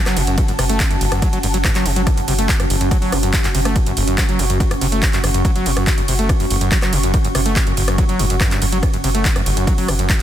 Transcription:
Already playing: C#4 F#4 F#5 A5
0.06 F#3, cross-stick, clap, closed hi-hat, ride
0.17 F#1 B2, open hi-hat, ride
0.27 F#1 F#2, closed hi-hat, ride
0.38 F#2, kick, closed hi-hat, ride
0.48 F#1 F#2, closed hi-hat, ride
0.59 F#1 C3, cross-stick, open hi-hat, ride
0.69 F#1 A3, closed hi-hat, ride
0.80 F#2, kick, clap, closed hi-hat, ride
0.91 F#2, closed hi-hat, ride
1.01 F#1, open hi-hat, ride
1.12 F#1 F#2, cross-stick, closed hi-hat, ride
1.22 F#3, kick, closed hi-hat, ride
1.33 F#1 F#3, closed hi-hat, ride
1.43 F#1 G2, open hi-hat, ride
1.54 F#1 F#3, closed hi-hat, ride
1.64 A2, kick, cross-stick, clap, closed hi-hat, ride
1.75 F#3, clap, closed hi-hat, ride
1.85 F#1 C3, open hi-hat, ride
1.96 F#1 F#3, closed hi-hat, ride
2.07 F#2, kick, cross-stick, closed hi-hat, ride
2.17 F#1 F#2, closed hi-hat, ride
2.28 F#1 C3, open hi-hat, ride
2.38 F#1 A3, closed hi-hat, ride
2.49 F#2, kick, clap, closed hi-hat, ride
2.60 F#2, cross-stick, closed hi-hat, ride
2.70 F#1, open hi-hat, ride
2.81 F#1 F#2, closed hi-hat, ride
2.91 F#3 C#6, kick, closed hi-hat, ride
3.02 F#1 F#3, open hi-hat, ride
3.12 F#1 B2, cross-stick, open hi-hat, ride
3.23 F#1 F#2, closed hi-hat, ride
3.33 kick, clap, closed hi-hat, ride
3.44 F#2, clap, closed hi-hat, ride
3.55 F#1 C3, open hi-hat, ride
3.65 F#1 A3, cross-stick, closed hi-hat, ride
3.76 F#2, kick, closed hi-hat, ride
3.86 F#1 F#2, closed hi-hat, ride
3.97 F#1, open hi-hat, ride
4.08 F#1 F#2, closed hi-hat, ride
4.18 F#3, kick, cross-stick, clap, closed hi-hat, ride
4.29 F#3, closed hi-hat, ride
4.39 F#1 B2, open hi-hat, ride
4.50 F#1 F#2, closed hi-hat, ride
4.60 F#2, kick, closed hi-hat, ride
4.71 F#1 F#2, cross-stick, closed hi-hat, ride
4.81 F#1 C3, open hi-hat, ride
4.92 F#1 A3, closed hi-hat, ride
5.02 F#2, kick, clap, closed hi-hat, ride
5.13 F#2, clap, closed hi-hat, ride
5.24 F#1, cross-stick, open hi-hat, ride
5.34 F#1 F#2, closed hi-hat, ride
5.45 F#3, kick, closed hi-hat, ride
5.55 F#1 F#3, closed hi-hat, ride
5.66 F#1 B2, open hi-hat, ride
5.77 F#1 F#2, cross-stick, closed hi-hat, ride
5.87 F#2, kick, clap, closed hi-hat, ride
5.98 F#2, closed hi-hat, ride
6.08 F#1 C3, open hi-hat, ride
6.19 F#1 A3, closed hi-hat, ride
6.29 F#2, kick, cross-stick, closed hi-hat, ride
6.40 F#1 F#2, open hi-hat, ride
6.50 F#1, open hi-hat, ride
6.61 F#1 F#2, closed hi-hat, ride
6.72 F#3, kick, clap, closed hi-hat, ride
6.82 F#3, cross-stick, clap, closed hi-hat, ride
6.93 F#1 B2, open hi-hat, ride
7.03 F#1 F#2, closed hi-hat, ride
7.14 F#2, kick, closed hi-hat, ride
7.25 F#1 F#2, closed hi-hat, ride
7.35 F#1 C3, cross-stick, open hi-hat, ride
7.46 F#1 A3, closed hi-hat, ride
7.56 F#2, kick, clap, closed hi-hat, ride
7.67 F#2, closed hi-hat, ride
7.77 F#1, open hi-hat, ride
7.88 F#1 F#2, cross-stick, closed hi-hat, ride
7.98 F#3, kick, closed hi-hat, ride
8.09 F#1 F#3, closed hi-hat, ride
8.19 F#1 F#2, open hi-hat, ride
8.30 F#1 F#2, closed hi-hat, ride
8.41 F#2, kick, cross-stick, clap, closed hi-hat, ride
8.51 G2, clap, closed hi-hat, ride
8.62 F#1 F#2, open hi-hat, ride
8.72 F#1 F#3, closed hi-hat, ride
8.83 F#2, kick, cross-stick, closed hi-hat, ride
8.93 F#1 F#2, closed hi-hat, ride
9.04 F#1 C3, open hi-hat, ride
9.15 F#1 A3, closed hi-hat, ride
9.25 F#2, kick, clap, closed hi-hat, ride
9.36 F#2, cross-stick, closed hi-hat, ride
9.46 F#1, open hi-hat, ride
9.57 F#1 F#2, closed hi-hat, ride
9.67 F#3, kick, closed hi-hat, ride
9.78 F#1 F#3, open hi-hat, ride
9.88 F#1 B2, cross-stick, open hi-hat, ride
9.99 F#1 F#2, closed hi-hat, ride
10.09 F#2, kick, clap, closed hi-hat, ride

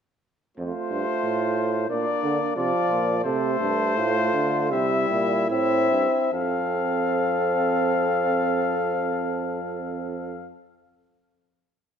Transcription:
0.57 F2 A3 F4 C5
0.91 G2
1.24 A2
1.89 A#2 A#3 D4 D5
2.23 D3
2.56 C3 F3 F4 D5
2.90 A#2
3.25 C3 A3 A4 C5
3.60 G2
3.96 A2 F4
4.33 D3
4.71 C3 G3 E4 E5
5.10 A#2
5.50 A2 C4 E5
5.91 G2
6.33 F2 C4 A4 F5

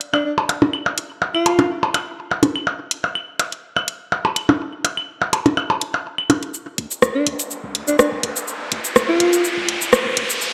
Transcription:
0.01 closed hi-hat
0.14 D4, claves, percussion blips
0.25 D4
0.38 percussion blips
0.49 closed hi-hat, percussion blips
0.62 percussion blips
0.73 claves
0.86 percussion blips
0.98 closed hi-hat
1.22 percussion blips
1.35 F4, claves
1.46 closed hi-hat, percussion blips
1.59 closed hi-hat, percussion blips
1.83 percussion blips
1.94 closed hi-hat, claves, percussion blips
2.31 percussion blips
2.43 closed hi-hat, percussion blips
2.56 claves
2.67 percussion blips
2.91 closed hi-hat
3.04 percussion blips
3.15 claves
3.39 closed hi-hat, percussion blips
3.52 closed hi-hat
3.77 claves, percussion blips
3.88 closed hi-hat
4.12 percussion blips
4.25 percussion blips
4.36 closed hi-hat, claves
4.49 percussion blips
4.85 closed hi-hat, percussion blips
4.97 claves
5.22 percussion blips
5.33 closed hi-hat, percussion blips
5.46 closed hi-hat, percussion blips
5.57 claves, percussion blips
5.70 percussion blips
5.81 closed hi-hat
5.94 percussion blips
6.18 claves
6.30 closed hi-hat, percussion blips
6.43 closed hi-hat
6.54 riser, cabasa
6.78 D2, closed hi-hat
6.91 cabasa
7.02 D2, cross-stick, cabasa
7.15 D4
7.27 D2, closed hi-hat
7.39 closed hi-hat, cabasa
7.51 cabasa
7.64 C2
7.75 D2, closed hi-hat
7.88 D1 D4, cabasa
7.99 D4, cross-stick, cabasa
8.12 C2
8.23 D2, closed hi-hat
8.36 cabasa
8.48 cabasa
8.72 D2, closed hi-hat
8.85 cabasa
8.96 D2, cross-stick, cabasa
9.09 F4
9.20 D2, closed hi-hat
9.33 closed hi-hat, cabasa
9.44 cabasa
9.57 C2
9.69 D2, closed hi-hat
9.81 D1, cabasa
9.93 cross-stick, cabasa
10.06 C2
10.17 D2, closed hi-hat
10.30 cabasa
10.41 cabasa

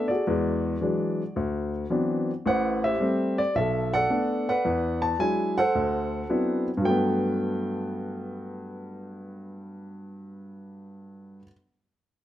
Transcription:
Already playing: A3 B3 D4 A4
0.08 F#4 G#4 D5
0.27 E2 G#3
0.81 E3 F#3 G#3 D4
1.36 D2
1.90 E3 F#3 B3 C4 D4
2.46 A1 A2 B4 C5 F#5
2.84 G4 C5 E5
3.00 G3 A3 C4
3.38 D5
3.55 B1 A4 E5
3.93 A4 D5 F#5
4.10 A3 B3 D4
4.49 B4 D5 F#5
4.65 E2
5.02 A5
5.19 F#3 G#3 D4 E4 G#5
5.58 A4 C5 F#5
5.75 D2
6.29 F#3 B3 C4 D4 E4
6.77 G2
6.82 F#3 A3 G5
6.90 B3

